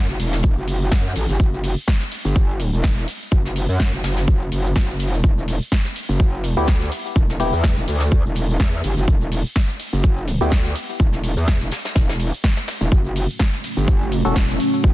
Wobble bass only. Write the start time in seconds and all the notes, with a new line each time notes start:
0.09 F#1
0.20 E1
0.57 F#1
0.92 F#2
1.16 A1
1.29 G1
1.40 F#1
2.25 G1
2.73 E1
3.32 F#1
3.69 F#2
3.93 F#1
4.04 F#1
4.52 F#1
4.76 F#1
5.24 E1
6.09 F#1
6.57 D2
7.16 E1
7.53 E2
7.77 E1
7.88 D2
8.25 E1
8.60 E2
8.84 G1
8.97 F#1
9.08 E1
9.93 F#1
10.41 D2
11.00 E1
11.37 E2
11.61 E1
11.96 E1
12.81 E1
12.92 F#1
13.77 G1
14.25 E1
14.84 F#1